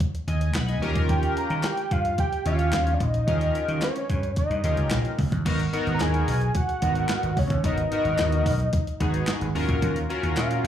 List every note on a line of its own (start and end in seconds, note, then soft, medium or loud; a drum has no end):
0.00 kick loud
0.00 closed hi-hat medium
0.15 closed hi-hat soft
0.27 0.55 D#2 medium
0.27 0.54 D#5 medium
0.27 0.53 G#5 medium
0.27 closed hi-hat medium
0.41 closed hi-hat medium
0.54 0.76 B1 medium
0.54 0.68 F#5 medium
0.54 0.68 B5 medium
0.54 snare loud
0.54 clap medium
0.54 closed hi-hat medium
0.68 0.95 D#5 medium
0.68 0.94 G#5 medium
0.68 closed hi-hat medium
0.82 1.24 D#2 medium
0.82 1.69 C#4 medium
0.82 1.69 F4 medium
0.82 1.69 G4 medium
0.82 1.70 A#4 loud
0.82 closed hi-hat medium
0.96 kick loud
0.96 closed hi-hat medium
1.09 1.39 G5 loud
1.09 kick loud
1.09 closed hi-hat medium
1.23 closed hi-hat medium
1.37 1.66 A#5 loud
1.37 closed hi-hat medium
1.50 1.61 D#3 medium
1.50 closed hi-hat soft
1.63 1.94 G5 loud
1.63 snare loud
1.63 clap medium
1.63 closed hi-hat medium
1.77 closed hi-hat soft
1.91 2.12 G2 medium
1.91 2.19 F5 loud
1.91 kick medium
1.91 closed hi-hat medium
2.05 closed hi-hat soft
2.18 2.45 G5 loud
2.18 kick loud
2.18 closed hi-hat medium
2.33 closed hi-hat soft
2.45 2.67 D#2 medium
2.45 2.91 C#4 medium
2.45 2.91 F4 medium
2.45 2.91 G4 medium
2.45 2.91 C#5 medium
2.45 2.96 F5 loud
2.45 closed hi-hat medium
2.59 closed hi-hat medium
2.73 2.94 D#2 medium
2.73 snare loud
2.73 clap medium
2.73 closed hi-hat medium
2.87 closed hi-hat medium
2.94 3.03 D5 medium
3.00 3.22 A#1 medium
3.00 3.83 D#5 loud
3.00 kick medium
3.00 closed hi-hat medium
3.14 closed hi-hat medium
3.27 3.49 D#2 medium
3.27 3.88 C#4 medium
3.27 3.88 F4 medium
3.27 3.88 G4 medium
3.27 3.88 A#4 medium
3.27 kick loud
3.27 closed hi-hat loud
3.41 closed hi-hat medium
3.55 closed hi-hat medium
3.68 3.79 D#3 medium
3.68 closed hi-hat soft
3.82 4.34 C#5 medium
3.82 snare loud
3.82 clap medium
3.82 closed hi-hat medium
3.96 closed hi-hat medium
4.10 4.31 G2 medium
4.10 kick medium
4.10 closed hi-hat medium
4.23 closed hi-hat soft
4.36 5.15 D#5 medium
4.36 kick loud
4.36 closed hi-hat medium
4.50 4.61 G2 medium
4.50 closed hi-hat soft
4.64 4.75 D#2 medium
4.64 5.09 C#4 medium
4.64 5.09 F4 medium
4.64 5.09 G4 medium
4.64 5.10 A#4 medium
4.64 closed hi-hat medium
4.77 4.88 C#2 medium
4.77 closed hi-hat medium
4.91 5.02 A#1 medium
4.91 snare loud
4.91 clap medium
4.91 closed hi-hat medium
5.05 closed hi-hat soft
5.19 5.29 C#2 medium
5.19 kick medium
5.19 open hi-hat medium
5.32 5.43 D#2 medium
5.32 kick loud
5.32 closed hi-hat medium
5.45 5.67 G#1 loud
5.45 5.59 B3 medium
5.45 5.59 D#4 medium
5.45 5.60 F#4 medium
5.45 5.60 A#4 loud
5.45 kick loud
5.45 closed hi-hat loud
5.45 crash loud
5.60 closed hi-hat medium
5.73 6.33 B3 medium
5.73 6.33 D#4 medium
5.73 6.34 F#4 medium
5.73 6.34 A#4 loud
5.73 closed hi-hat medium
5.87 5.97 G#1 loud
5.87 closed hi-hat soft
5.94 6.03 A#5 medium
6.00 6.22 D#2 loud
6.00 6.58 G#5 loud
6.00 snare loud
6.00 clap medium
6.00 closed hi-hat medium
6.14 closed hi-hat soft
6.28 6.49 B1 medium
6.28 open hi-hat medium
6.41 closed hi-hat soft
6.55 7.40 F#5 loud
6.55 kick loud
6.55 closed hi-hat medium
6.69 closed hi-hat medium
6.82 7.04 G#1 medium
6.82 7.27 B3 medium
6.82 7.27 D#4 medium
6.82 7.28 F#4 medium
6.82 7.28 A#4 medium
6.82 kick medium
6.82 closed hi-hat medium
6.95 closed hi-hat medium
7.09 snare loud
7.09 clap loud
7.09 closed hi-hat medium
7.23 7.34 G#1 medium
7.23 closed hi-hat medium
7.37 7.47 C#2 medium
7.37 7.65 C#5 medium
7.37 kick medium
7.37 open hi-hat medium
7.50 7.65 D#2 loud
7.50 kick loud
7.50 closed hi-hat medium
7.64 7.85 G#1 loud
7.64 7.78 B3 medium
7.64 7.78 D#4 medium
7.64 7.78 F#4 medium
7.64 7.78 A#4 medium
7.64 9.25 D#5 loud
7.64 kick loud
7.64 closed hi-hat loud
7.78 closed hi-hat medium
7.91 8.52 B3 medium
7.91 8.52 D#4 medium
7.91 8.52 F#4 medium
7.91 8.52 A#4 medium
7.91 closed hi-hat medium
8.05 8.15 G#1 medium
8.05 closed hi-hat soft
8.18 8.46 D#2 loud
8.18 snare loud
8.18 clap medium
8.18 closed hi-hat medium
8.32 closed hi-hat medium
8.46 8.67 B1 medium
8.46 kick loud
8.46 open hi-hat medium
8.60 closed hi-hat soft
8.73 kick loud
8.73 closed hi-hat medium
8.87 closed hi-hat medium
9.00 9.22 G#1 medium
9.00 9.45 B3 medium
9.00 9.46 D#4 medium
9.00 9.46 F#4 medium
9.00 9.46 G#4 medium
9.00 kick loud
9.00 closed hi-hat medium
9.14 closed hi-hat medium
9.27 snare loud
9.27 clap medium
9.27 closed hi-hat medium
9.41 9.52 G#1 medium
9.41 closed hi-hat medium
9.55 9.66 D#2 loud
9.55 9.99 C#4 medium
9.55 9.99 F4 medium
9.55 9.99 F#4 medium
9.55 9.99 A#4 loud
9.55 open hi-hat medium
9.69 9.79 A#1 medium
9.69 kick loud
9.69 closed hi-hat medium
9.82 10.04 D#2 loud
9.82 kick loud
9.82 closed hi-hat loud
9.96 closed hi-hat medium
10.09 10.67 C#4 loud
10.09 10.67 F4 medium
10.09 10.67 F#4 medium
10.09 10.67 A#4 loud
10.09 closed hi-hat medium
10.23 10.34 D#2 loud
10.23 closed hi-hat soft
10.36 10.58 A#2 medium
10.36 10.67 F5 medium
10.36 snare loud
10.36 clap loud
10.36 closed hi-hat medium
10.51 closed hi-hat medium
10.64 10.67 F#2 medium